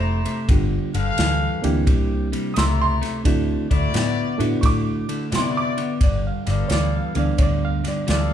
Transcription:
Already playing: F1 C3 A3 E4 C5 D5 A#5
0.25 C3 A3, ride
0.48 G1 G2 D3 A3 B3 D4 F4 G4, kick, ride
0.94 G1 G2 D3 A4 B4 F5, ride
1.18 D2 G2 E3, snare, ride
1.62 D2 G2 E3 A#3 C4 D4 E4 G4, ride
1.87 C2 C3 G3, kick, ride
2.32 C3 G3, ride
2.54 C#2 C3 A3 E4 D5 A#5 D#6, snare, ride
2.58 C6 E6
2.82 C6
3.01 C3 A3, snare, ride
3.24 D2 D3 A3 C4 D4 E4 F#4, kick, ride
3.70 D2 D3 A3 E4 F#4 D5, kick, ride
3.94 A2 D3 B3, snare, ride
4.38 A2 D3 A3 B3 D4 E4 F#4, ride
4.61 A2 D3 A3 C#6, kick, snare, ride
4.66 D6
5.09 D3 A3, ride
5.31 C3 D3 B3 E4 F#4 D5, snare, ride
5.35 C6
5.57 D6
5.77 D3 B3, ride
6.01 G1 G2 D3 D5, kick, ride
6.27 F5
6.45 G1 G2 D3 B3 G4 A4 F5, snare, ride
6.50 D5
6.68 D2 G2 E3 C#5, snare, ride
6.73 D5
6.96 F5
7.15 D2 G2 E3 A3 B3 D4 F5, ride
7.19 D5
7.38 D2 G2 D3 C#5, kick, ride
7.43 D5
7.65 F5
7.84 G2 D3, snare, ride
7.88 D5
8.07 D2 G2 E3 B3 G4 A4 D5 F5, snare, ride

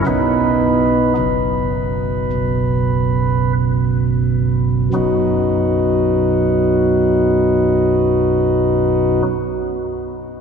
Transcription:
0.06 B1 B2 B3 D#4 B4
1.17 F#1 F#2
2.33 B1
4.93 B1 F#2 F#3 B3 D#4 F#4

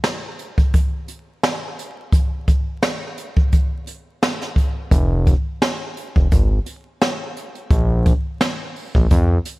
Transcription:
0.04 snare, closed hi-hat
0.39 closed hi-hat
0.58 kick, closed hi-hat
0.73 kick, closed hi-hat
1.08 closed hi-hat
1.43 snare, closed hi-hat
1.79 closed hi-hat
2.12 kick, closed hi-hat
2.48 kick, closed hi-hat
2.83 snare, closed hi-hat
3.18 closed hi-hat
3.37 kick
3.52 kick, closed hi-hat
3.87 closed hi-hat
4.23 snare, closed hi-hat
4.41 snare, closed hi-hat
4.56 kick, closed hi-hat
4.91 F1, kick, closed hi-hat
5.27 kick, closed hi-hat
5.62 snare, closed hi-hat
5.97 closed hi-hat
6.16 F1, kick
6.32 G#1, kick, closed hi-hat
6.66 closed hi-hat
7.02 snare, closed hi-hat
7.37 closed hi-hat
7.55 closed hi-hat
7.70 A#1, kick, closed hi-hat
8.06 kick, closed hi-hat
8.41 snare, closed hi-hat
8.76 open hi-hat
8.95 A#1, kick
9.11 F2, kick, closed hi-hat
9.45 closed hi-hat

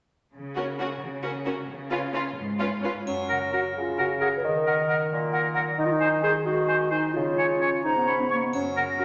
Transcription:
0.34 C#3
0.56 C#4 F#4 A#4
0.79 C#4 F#4 A#4
1.01 C#3
1.23 C#4 F#4 A#4
1.46 C#4 F#4 A#4
1.68 C#3
1.91 C#4 F4 B4
2.13 C#4 F4 B4
2.36 G#2
2.59 C#4 F4 B4
2.82 C#4 F4 B4
3.06 F#2 F#3 C#4, triangle
3.29 C#3 A#4 F#5
3.52 F#4 A#4 F#5
3.76 C#3 F#3 F4
3.98 C#3 F#4 A#4 F#5
4.20 F#3 G#4 A#4 F#5
4.38 B4
4.43 D#3 A#4
4.66 D#4 A#4 F#5
4.88 F#4 A#4 F#5
5.11 A#2 F#3
5.32 D#4 A#4 F#5
5.54 F#3 A#4 F#5
5.78 D#3 D#4
5.86 F4
5.92 D#4
6.00 D#4 C5 G#5
6.22 G#4 C5 G#5
6.45 D#3 G#3 F#4
6.68 D#4 C5 G#5
6.91 G#3 D#4 C5 G#5
7.14 C#3 F4
7.38 C#4 C#5 G#5
7.61 G#4 C#5 G#5
7.84 G#2 G#3 D#4 A#5
7.97 B3
8.06 C#4 C#5 B5
8.21 B3
8.30 G#3 A#3 C#5 C#6
8.43 B3
8.53 F#2 F#3 C#4, triangle
8.76 C#3 A#4 F#5
8.99 F#4 A#4 F#5

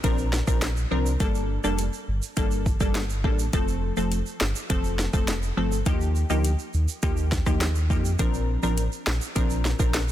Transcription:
Already playing: impact
0.04 A#1 F3 C4 D4 A#4, kick, closed hi-hat, shaker
0.18 shaker
0.33 snare, shaker
0.47 A#1 F3 C4 D4 A#4, kick, shaker
0.62 snare, clap, closed hi-hat, shaker
0.77 shaker
0.91 C2 F3 C4 D4 A#4
1.06 shaker
1.20 G1 G3 A#3 D4 A4, kick, closed hi-hat, shaker
1.35 shaker
1.64 F1 G3 A#3 D4 A4, shaker
1.78 closed hi-hat, shaker
1.93 shaker
2.08 G1
2.22 shaker
2.37 G1 G3 A#3 D4 A4, kick, closed hi-hat, shaker
2.51 shaker
2.66 kick, shaker
2.80 G1 G3 A#3 D4 A4, kick, shaker
2.95 snare, clap, closed hi-hat, shaker
3.10 shaker
3.24 A1 G3 A#3 D4 A4, kick
3.39 shaker
3.53 F1 F3 A3 C4 A4, kick, closed hi-hat, shaker
3.68 shaker
3.97 F1 F3 A3 C4 A4, shaker
4.12 closed hi-hat, shaker
4.26 shaker
4.41 G1, snare, clap
4.55 shaker
4.70 F1 F3 A3 C4 A4, kick, closed hi-hat, shaker
4.84 shaker
4.99 snare, shaker
5.13 F1 F3 A3 C4 A4, kick, shaker
5.28 snare, clap, closed hi-hat, shaker
5.43 shaker
5.57 G1 F3 A3 C4 A4
5.72 shaker
5.86 D#2 F3 A#3 D#4 G4, kick, closed hi-hat, shaker
6.01 shaker
6.15 shaker
6.30 D2 F3 A#3 D#4 G4, shaker
6.44 closed hi-hat, shaker
6.59 shaker
6.74 D#2, shaker
6.88 shaker
7.03 D#2 F3 A#3 D#4 G4, kick, closed hi-hat, shaker
7.17 shaker
7.32 kick, snare, shaker
7.46 D#2 F3 A#3 D#4 G4, kick, cross-stick, shaker
7.61 snare, clap, closed hi-hat, shaker
7.75 shaker
7.90 F2 F3 A#3 D#4 G4, kick, shaker
8.05 shaker
8.19 A#1 F3 C4 D4 A#4, kick, closed hi-hat, shaker
8.34 shaker
8.63 A1 F3 C4 D4 A#4, shaker
8.78 closed hi-hat, shaker
8.92 shaker
9.07 A#1, snare, clap
9.21 shaker
9.36 A#1 F3 C4 D4 A#4, kick, closed hi-hat, shaker
9.50 shaker
9.65 snare, shaker
9.79 A#1 F3 C4 D4 A#4, kick, shaker
9.94 snare, clap, closed hi-hat, shaker
10.08 shaker

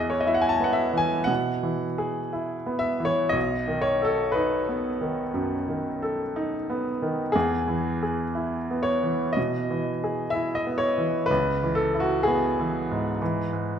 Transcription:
Already playing: E2 E3 G#4 B4 D#5
0.10 C#5
0.20 D#5
0.26 E4 E5
0.34 F#5
0.41 G#5
0.49 A5
0.56 G#5
0.60 B3 F#5
0.73 E5
0.93 E3
0.98 G#5
1.24 B2 F#5
1.63 E3
1.98 G#4
2.33 E4
2.66 B3
2.79 E5
3.00 E3
3.05 C#5
3.29 B1 D#5
3.68 D#3
3.81 C#5
4.05 A4
4.32 D#4 B4
4.69 B3
5.01 D#3
5.34 F#2
5.68 D#3
6.02 A4
6.36 D#4
6.70 B3
7.02 D#3
7.32 E2 G#4
7.68 E3
8.03 G#4
8.35 E4
8.71 B3
8.83 C#5
9.03 E3
9.33 D#5
9.37 B2
9.70 E3
10.04 G#4
10.30 E5
10.34 E4
10.55 D#5
10.67 B3
10.78 C#5
10.98 E3
11.26 B4
11.31 C#2
11.63 E3
11.75 A4
11.95 E4
12.00 F#4
12.23 B3 G#4
12.59 E3
12.91 G#2
13.22 E3
13.53 G#2

